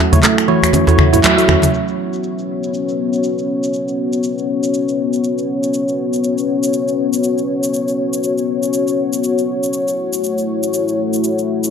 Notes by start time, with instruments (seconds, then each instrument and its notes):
Already playing: analog synth pad A3 E4 F#4 E5
0.00 handpan C#4
0.12 tine electric piano A3 E4 F#4 C#5, closed hi-hat, mid tom, high conga, djembe bass, shaker
0.23 handpan A3, clap, closed hi-hat, djembe tone, shaker
0.38 finger snap, shaker
0.48 handpan E3, tine electric piano A3 E4 F#4 C#5, muted conga
0.62 finger snap, closed hi-hat, djembe tone, shaker
0.73 handpan C#4, closed hi-hat, high conga, shaker
0.87 tine electric piano A3 E4 F#4 C#5, closed hi-hat, djembe slap, muted conga, djembe tone, shaker
0.98 handpan F#4, finger snap, mid tom, high conga, djembe bass
1.13 tine electric piano A3 E4 F#4 C#5, handpan E4, closed hi-hat, low conga, shaker
1.23 handpan F#3, finger snap, clap, closed hi-hat, muted conga, djembe tone, shaker
1.38 tine electric piano A3 E4 F#4 E5, closed hi-hat, shaker
1.48 handpan C#4, finger snap, djembe tone, high conga
1.62 closed hi-hat, mid tom, muted conga, djembe slap, shaker
1.73 analog synth pad B3 C#4 F#4 C#5, shaker
1.88 shaker
2.13 shaker
2.24 shaker
2.38 shaker
2.64 shaker
2.74 shaker
2.89 shaker
3.13 shaker
3.23 shaker
3.38 shaker
3.63 shaker
3.73 shaker
3.88 shaker
4.13 shaker
4.23 shaker
4.38 shaker
4.63 shaker
4.74 shaker
4.89 shaker
5.13 shaker
5.24 shaker
5.38 shaker
5.63 shaker
5.74 shaker
5.88 shaker
6.13 shaker
6.24 shaker
6.38 shaker
6.63 shaker
6.73 shaker
6.88 shaker
7.13 shaker
7.24 shaker
7.38 shaker
7.63 shaker
7.74 shaker
7.88 shaker
8.13 shaker
8.23 shaker
8.38 shaker
8.63 shaker
8.73 shaker
8.88 shaker
9.13 shaker
9.24 shaker
9.38 shaker
9.63 shaker
9.73 analog synth pad A3 E4, shaker
9.88 shaker
10.13 shaker
10.24 shaker
10.38 shaker
10.63 shaker
10.74 shaker
10.88 shaker
11.13 shaker
11.24 shaker
11.39 shaker
11.64 shaker